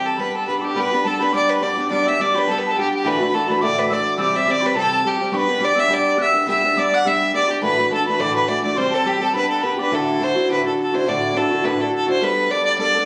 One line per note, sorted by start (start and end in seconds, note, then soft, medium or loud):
0.00 0.17 E3 medium
0.00 0.18 G3 medium
0.00 0.19 C4 medium
0.00 0.19 G4 medium
0.05 0.21 A4 medium
0.05 0.18 A5 medium
0.17 0.47 G3 medium
0.17 0.48 B3 medium
0.17 0.49 D4 medium
0.17 0.49 G4 medium
0.17 0.30 B4 medium
0.17 0.33 B5 medium
0.30 0.37 B4 soft
0.30 0.46 A5 medium
0.35 0.47 A4 medium
0.47 0.62 G3 soft
0.47 0.63 B3 soft
0.47 0.63 D4 soft
0.47 0.61 G4 medium
0.47 0.58 B4 medium
0.47 0.63 B5 medium
0.59 0.75 G4 soft
0.59 0.65 A4 soft
0.59 0.75 D6 medium
0.64 0.74 B3 soft
0.64 0.75 D4 soft
0.64 0.81 G4 medium
0.75 0.90 G3 medium
0.75 0.91 B3 medium
0.75 0.91 D4 medium
0.75 0.90 G4 medium
0.75 0.84 B5 medium
0.79 1.08 B4 medium
0.84 0.93 B5 medium
0.92 1.04 B3 soft
0.92 1.05 D4 soft
0.92 1.04 G4 medium
0.92 1.03 B5 medium
1.03 1.19 G3 medium
1.03 1.20 B3 medium
1.03 1.19 D4 medium
1.03 1.24 A4 medium
1.03 1.18 A5 medium
1.07 1.17 G4 medium
1.19 1.31 B3 soft
1.19 1.32 D4 soft
1.19 1.32 G4 medium
1.19 1.34 B4 medium
1.19 1.35 B5 medium
1.32 1.60 G3 medium
1.32 1.61 B3 medium
1.32 1.62 D4 medium
1.32 1.62 G4 medium
1.32 1.51 D5 loud
1.32 1.48 D6 medium
1.50 1.64 B4 medium
1.50 1.65 B5 medium
1.61 1.76 G3 soft
1.61 1.77 B3 medium
1.61 1.77 D4 medium
1.61 1.75 G4 medium
1.61 1.90 D5 medium
1.61 1.90 D6 medium
1.76 1.90 B3 soft
1.76 1.90 D4 soft
1.76 1.90 G4 soft
1.90 2.05 G3 medium
1.90 2.06 B3 medium
1.90 2.06 D4 medium
1.90 2.05 G4 medium
1.90 2.10 D5 medium
1.90 2.04 D6 medium
2.06 2.19 B3 soft
2.06 2.20 D4 soft
2.06 2.19 G4 soft
2.06 2.23 E5 medium
2.06 2.21 E6 medium
2.19 2.34 G3 medium
2.19 2.35 B3 medium
2.19 2.35 D4 medium
2.19 2.33 G4 medium
2.19 2.40 D5 medium
2.19 2.37 D6 medium
2.34 2.47 B3 soft
2.34 2.48 D4 soft
2.34 2.47 G4 medium
2.34 2.46 B5 medium
2.39 2.53 B4 loud
2.47 2.75 G3 medium
2.47 2.75 B3 medium
2.47 2.76 D4 medium
2.47 2.77 G4 medium
2.47 2.56 A5 medium
2.51 2.60 A4 medium
2.58 2.73 B4 medium
2.67 2.78 A5 medium
2.71 2.78 A4 medium
2.76 3.04 G3 soft
2.76 3.04 B3 medium
2.76 3.04 D4 medium
2.76 3.05 G4 medium
2.76 3.04 G5 medium
2.81 2.92 G4 medium
2.94 3.09 G4 medium
3.04 3.19 D2 medium
3.04 3.19 A2 medium
3.04 3.19 E3 medium
3.04 3.19 A3 medium
3.04 3.19 D4 medium
3.04 3.17 F#4 medium
3.04 3.36 B4 loud
3.04 3.19 B5 medium
3.19 3.30 E3 soft
3.19 3.32 A3 soft
3.19 3.33 D4 medium
3.19 3.32 F#4 medium
3.19 3.32 B5 medium
3.32 3.47 E3 medium
3.32 3.47 A3 medium
3.32 3.46 D4 medium
3.32 3.45 F#4 medium
3.32 3.52 A4 medium
3.32 3.50 A5 medium
3.46 3.61 E3 soft
3.46 3.61 A3 soft
3.46 3.61 D4 soft
3.46 3.60 F#4 medium
3.46 3.63 B5 medium
3.51 3.62 B4 medium
3.61 3.90 D2 medium
3.61 3.89 A2 medium
3.61 3.87 E3 medium
3.61 3.89 A3 medium
3.61 3.89 D4 medium
3.61 3.90 F#4 medium
3.61 3.81 D5 loud
3.61 3.89 D6 loud
3.79 3.94 B4 medium
3.89 4.17 E3 medium
3.89 4.17 A3 soft
3.89 4.18 D4 medium
3.89 4.19 F#4 medium
3.89 4.19 D5 medium
3.89 3.95 E6 medium
3.94 4.16 D6 medium
4.17 4.33 C3 medium
4.17 4.33 E3 medium
4.17 4.33 G3 medium
4.17 4.33 C4 medium
4.17 4.32 G4 medium
4.17 4.37 D5 medium
4.17 4.23 E6 medium
4.22 4.44 D6 medium
4.33 4.45 G3 soft
4.33 4.47 C4 soft
4.33 4.46 G4 soft
4.33 4.52 E5 medium
4.45 4.61 E3 medium
4.45 4.62 G3 medium
4.45 4.63 C4 medium
4.45 4.61 G4 medium
4.45 4.62 D6 medium
4.50 4.67 D5 loud
4.61 4.75 C4 soft
4.61 4.75 G4 soft
4.61 4.76 B5 medium
4.65 4.74 G3 soft
4.65 4.77 B4 loud
4.74 5.03 C3 medium
4.74 5.02 E3 medium
4.74 5.03 G3 medium
4.74 5.03 C4 medium
4.74 5.05 G4 medium
4.74 5.09 A4 loud
4.74 5.03 A5 medium
5.03 5.19 E3 medium
5.03 5.19 G3 medium
5.03 5.19 C4 medium
5.03 5.17 G4 medium
5.03 5.10 A5 medium
5.07 5.34 G4 medium
5.07 5.31 G5 medium
5.18 5.30 G3 soft
5.18 5.33 C4 soft
5.18 5.32 G4 soft
5.31 5.47 G3 medium
5.31 5.47 B3 medium
5.31 5.48 D4 medium
5.31 5.46 G4 medium
5.31 5.38 C#6 medium
5.36 5.66 B4 loud
5.36 5.59 B5 medium
5.47 5.59 B3 soft
5.47 5.59 D4 soft
5.47 5.61 G4 soft
5.58 5.75 G3 medium
5.58 5.76 B3 medium
5.58 5.75 D4 medium
5.58 5.73 G4 medium
5.58 5.77 D6 medium
5.64 5.81 D5 loud
5.74 5.88 B3 soft
5.74 5.89 D4 soft
5.74 5.88 G4 soft
5.74 5.91 E6 medium
5.79 5.95 E5 loud
5.88 6.15 G3 medium
5.88 6.16 B3 medium
5.88 6.18 D4 medium
5.88 6.18 G4 medium
5.88 6.20 D6 medium
5.93 6.20 D5 loud
6.16 6.33 G3 medium
6.16 6.33 B3 medium
6.16 6.32 D4 medium
6.16 6.30 G4 medium
6.16 6.23 F#6 medium
6.21 6.46 E5 loud
6.21 6.47 E6 loud
6.32 6.46 B3 soft
6.32 6.47 D4 soft
6.32 6.46 G4 soft
6.46 6.62 G3 medium
6.46 6.63 B3 medium
6.46 6.63 D4 medium
6.46 6.61 G4 medium
6.46 6.80 E5 loud
6.46 6.79 E6 medium
6.62 6.75 B3 soft
6.62 6.76 D4 soft
6.62 6.75 G4 soft
6.75 7.03 G3 medium
6.75 7.04 B3 medium
6.75 7.04 D4 medium
6.75 7.05 G4 medium
6.75 6.95 D5 loud
6.75 6.95 D6 medium
6.94 7.09 F#5 loud
6.94 7.07 F#6 medium
7.05 7.32 G3 medium
7.05 7.33 B3 medium
7.05 7.33 D4 medium
7.05 7.34 G4 medium
7.05 7.34 E5 loud
7.05 7.20 E6 medium
7.33 7.48 G3 soft
7.33 7.49 B3 medium
7.33 7.48 D4 soft
7.33 7.47 G4 medium
7.33 7.53 D5 loud
7.33 7.51 D6 medium
7.48 7.62 B3 soft
7.48 7.62 D4 soft
7.48 7.61 G4 soft
7.48 7.63 G4 medium
7.48 7.64 G5 medium
7.61 7.77 D2 medium
7.61 7.77 A2 medium
7.61 7.77 E3 medium
7.61 7.77 A3 medium
7.61 7.77 D4 medium
7.61 7.75 F#4 medium
7.61 7.89 B4 loud
7.61 7.90 B5 medium
7.76 7.88 E3 soft
7.76 7.90 A3 soft
7.76 7.90 D4 soft
7.76 7.90 F#4 soft
7.90 8.05 E3 medium
7.90 8.06 A3 medium
7.90 8.05 D4 medium
7.90 8.04 F#4 medium
7.90 8.05 A5 medium
7.94 8.07 A4 loud
8.05 8.18 E3 soft
8.05 8.18 A3 soft
8.05 8.19 D4 soft
8.05 8.19 F#4 soft
8.05 8.22 B4 loud
8.05 8.22 B5 medium
8.18 8.47 D2 medium
8.18 8.47 A2 medium
8.18 8.46 E3 medium
8.18 8.47 A3 medium
8.18 8.48 D4 medium
8.18 8.48 F#4 medium
8.18 8.35 D5 loud
8.18 8.37 D6 medium
8.35 8.50 B4 medium
8.35 8.47 B5 medium
8.47 8.63 E3 medium
8.47 8.63 A3 medium
8.47 8.62 D4 medium
8.47 8.61 F#4 medium
8.47 8.63 D5 loud
8.47 8.62 D6 medium
8.62 8.75 E3 soft
8.62 8.77 A3 soft
8.62 8.76 D4 soft
8.62 8.76 F#4 soft
8.62 8.79 D5 medium
8.62 8.78 D6 medium
8.76 8.91 C3 medium
8.76 8.92 E3 medium
8.76 8.92 G3 medium
8.76 8.91 C4 medium
8.76 8.90 G4 medium
8.76 8.96 C5 loud
8.76 8.89 C6 medium
8.90 9.04 G3 soft
8.90 9.04 C4 soft
8.90 9.04 G4 medium
8.90 9.06 A5 medium
8.95 9.08 A4 medium
9.03 9.19 E3 medium
9.03 9.20 G3 medium
9.03 9.19 C4 medium
9.03 9.18 G4 medium
9.03 9.23 G4 loud
9.03 9.20 G5 medium
9.19 9.32 G3 soft
9.19 9.34 C4 soft
9.19 9.33 G4 soft
9.19 9.34 A4 loud
9.19 9.35 A5 medium
9.33 9.61 G3 medium
9.33 9.62 B3 medium
9.33 9.64 D4 medium
9.33 9.63 G4 medium
9.33 9.49 B4 loud
9.33 9.51 B5 medium
9.49 9.64 A4 medium
9.49 9.63 A5 medium
9.62 9.78 G3 soft
9.62 9.78 B3 medium
9.62 9.78 D4 medium
9.62 9.75 G4 medium
9.62 9.78 B4 medium
9.62 9.81 B5 medium
9.77 9.92 B3 soft
9.77 9.91 D4 soft
9.77 9.90 G4 soft
9.77 9.92 D6 medium
9.82 9.96 B4 medium
9.91 10.20 D2 medium
9.91 10.20 A2 medium
9.91 10.19 D3 medium
9.91 10.20 D4 medium
9.91 10.20 E4 medium
9.91 10.20 F#4 medium
9.91 10.25 A4 medium
10.19 10.35 D3 medium
10.19 10.35 D4 medium
10.19 10.35 E4 medium
10.19 10.34 F#4 medium
10.23 10.50 C5 loud
10.35 10.48 D3 soft
10.35 10.48 D4 soft
10.35 10.48 E4 soft
10.35 10.48 F#4 medium
10.48 10.64 D2 medium
10.48 10.64 A2 medium
10.48 10.64 D3 medium
10.48 10.63 D4 medium
10.48 10.62 E4 medium
10.48 10.62 F#4 medium
10.52 10.65 B4 medium
10.63 10.96 D3 soft
10.63 10.94 D4 soft
10.63 10.92 E4 soft
10.63 10.91 F#4 soft
10.63 10.78 A4 medium
10.81 10.96 A4 medium
10.93 11.05 D3 soft
10.93 11.06 D4 soft
10.93 11.06 E4 medium
10.93 11.06 F#4 soft
10.93 11.10 C5 medium
11.06 11.35 D2 medium
11.06 11.35 A2 medium
11.06 11.33 D3 medium
11.06 11.34 D4 medium
11.06 11.35 E4 medium
11.06 11.36 F#4 medium
11.06 11.38 D5 loud
11.33 11.49 D3 medium
11.33 11.50 D4 medium
11.33 11.50 E4 medium
11.33 11.49 F#4 medium
11.33 11.67 A4 medium
11.50 11.63 D3 soft
11.50 11.63 D4 soft
11.50 11.64 E4 soft
11.50 11.63 F#4 medium
11.63 11.79 D2 medium
11.63 11.79 A2 medium
11.63 11.79 D3 medium
11.63 11.79 D4 medium
11.63 11.78 E4 medium
11.63 11.77 F#4 medium
11.63 11.83 B4 medium
11.78 12.09 D3 soft
11.78 12.08 D4 medium
11.78 12.06 E4 soft
11.78 12.05 F#4 medium
11.78 11.93 A4 medium
11.96 12.09 A4 medium
12.06 12.20 D3 soft
12.06 12.21 D4 soft
12.06 12.21 E4 medium
12.06 12.20 F#4 medium
12.06 12.25 C5 loud
12.20 12.48 G3 medium
12.20 12.49 B3 medium
12.20 12.51 D4 medium
12.20 12.52 A4 medium
12.20 12.52 B4 loud
12.49 12.77 G3 medium
12.49 12.78 B3 medium
12.49 12.79 D4 medium
12.49 12.79 A4 medium
12.49 12.65 D5 loud
12.65 12.78 D5 loud
12.78 12.94 G3 medium
12.78 12.94 B3 medium
12.78 12.95 D4 medium
12.78 12.93 A4 medium
12.78 13.05 D5 loud
12.95 13.05 B3 soft
12.95 13.05 D4 soft
12.95 13.05 A4 soft